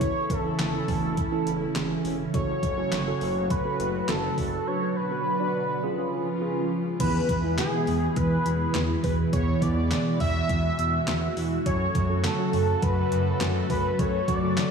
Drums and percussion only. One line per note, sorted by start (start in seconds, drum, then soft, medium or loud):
0.01 kick loud
0.01 closed hi-hat medium
0.30 kick loud
0.30 closed hi-hat medium
0.59 snare loud
0.59 clap loud
0.59 closed hi-hat medium
0.88 kick loud
0.88 open hi-hat medium
1.17 kick loud
1.17 closed hi-hat medium
1.47 closed hi-hat medium
1.76 snare loud
1.76 clap loud
1.76 closed hi-hat medium
2.05 open hi-hat medium
2.34 kick loud
2.34 closed hi-hat medium
2.63 kick loud
2.63 closed hi-hat medium
2.92 snare loud
2.92 clap medium
2.92 closed hi-hat medium
3.21 open hi-hat medium
3.50 kick loud
3.50 closed hi-hat medium
3.80 closed hi-hat medium
4.09 snare loud
4.09 clap loud
4.09 closed hi-hat medium
4.38 kick medium
4.38 open hi-hat medium
7.00 kick loud
7.00 closed hi-hat medium
7.00 crash loud
7.29 kick loud
7.29 closed hi-hat medium
7.58 snare loud
7.58 clap loud
7.58 closed hi-hat medium
7.87 open hi-hat medium
8.16 kick loud
8.16 closed hi-hat medium
8.46 closed hi-hat medium
8.75 snare loud
8.75 clap loud
8.75 closed hi-hat medium
9.04 kick medium
9.04 open hi-hat medium
9.33 kick loud
9.33 closed hi-hat medium
9.62 kick loud
9.62 closed hi-hat medium
9.91 snare loud
9.91 clap loud
9.91 closed hi-hat medium
10.20 kick loud
10.20 open hi-hat medium
10.49 kick loud
10.49 closed hi-hat medium
10.79 closed hi-hat medium
11.08 snare loud
11.08 clap loud
11.08 closed hi-hat medium
11.37 open hi-hat medium
11.66 kick loud
11.66 closed hi-hat medium
11.95 kick loud
11.95 closed hi-hat medium
12.24 snare loud
12.24 clap loud
12.24 closed hi-hat medium
12.53 open hi-hat medium
12.82 kick loud
12.82 closed hi-hat medium
13.12 closed hi-hat medium
13.41 snare loud
13.41 clap loud
13.41 closed hi-hat medium
13.70 kick medium
13.70 open hi-hat medium
13.99 kick loud
13.99 closed hi-hat medium
14.28 kick loud
14.28 closed hi-hat medium
14.57 snare loud
14.57 clap loud
14.57 closed hi-hat medium